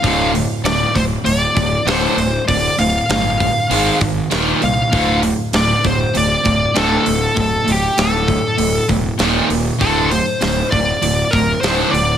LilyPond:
<<
  \new Staff \with { instrumentName = "Lead electric guitar" } { \time 4/4 \key d \minor \tempo 4 = 98 f''8 r8 d''8 c''8 d''4 c''4 | d''8 f''8 f''4. r4 f''8~ | f''8 r8 d''8 c''8 d''4 a'4 | a'8 g'8 a'4. r4. |
a'8 c''4 d''4 bes'8 c''8 d''8 | }
  \new Staff \with { instrumentName = "Overdriven electric guitar" } { \clef bass \time 4/4 \key d \minor <d, a, d>8 <d, a,>8 <d, a,>8 <d, a,>8 <d, a,>8 <d, a,>8 <d, a, d>8 <d, a,>8 | <d, a,>8 <d, a,>8 <d, a,>8 <d, a,>8 <gis, dis gis>8 <gis, dis>8 <ees, bes, ees>8 <ees, bes,>8 | <d, a, d>8 <d, a,>8 <d, a,>8 <d, a,>8 <d, a,>8 <d, a,>8 <d, a, d>8 <d, a,>8 | <d, a,>8 <d, a,>8 <d, a,>8 <d, a,>8 <d, a,>8 <d, a,>8 <ees, bes, ees>8 <ees, bes,>8 |
<d, a, d>8 <d, a,>8 <d, a,>8 <d, a,>8 <d, a,>8 <d, a,>8 <d, a, d>8 <d, a,>8 | }
  \new Staff \with { instrumentName = "Fingered electric bass" } { \clef bass \time 4/4 \key d \minor d,,4 d,,8 d,,8 d,,8 d,,8 d,,8 d,,8 | d,,8 d,,8 g,,4 gis,,8 gis,,8 ees,,8 c,8 | d,,4 d,,8 d,,8 d,,8 d,,8 d,,8 d,,8 | d,,8 d,,8 d,,4 d,,8 e,,8 ees,,8 ees,,8 |
d,,4 d,,8 d,,8 d,,8 d,,8 d,,8 d,,8 | }
  \new DrumStaff \with { instrumentName = "Drums" } \drummode { \time 4/4 <hho bd>8 hho8 <hho sn>8 <hho bd>8 hho8 <hho bd>8 <hho sn>8 hho8 | <hho bd>8 hho8 <hho sn>8 <hho bd>8 hho8 <hho bd>8 <hho sn>8 hho8 | <hho bd>8 hho8 <hho sn>8 <hho bd>8 hho8 <hho bd>8 <hho sn>8 hho8 | <hho bd>8 hho8 <hho sn>8 <hho bd>8 hho8 <hho bd>8 <hho sn>8 hho8 |
<hho bd>8 hho8 <hho sn>8 <hho bd>8 hho8 <hho bd>8 <hho sn>8 hho8 | }
>>